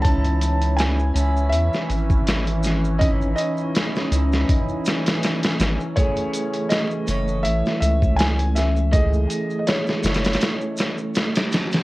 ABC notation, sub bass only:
X:1
M:4/4
L:1/8
Q:"Swing 16ths" 1/4=81
K:C#m
V:1 name="Sub bass" clef=bass
C,,3 C,, E,, G,,,3- | G,,, z2 C,, z3 G,,, | z3 F,,, A,,, C,,3- | C,, z2 F,,, z4 |]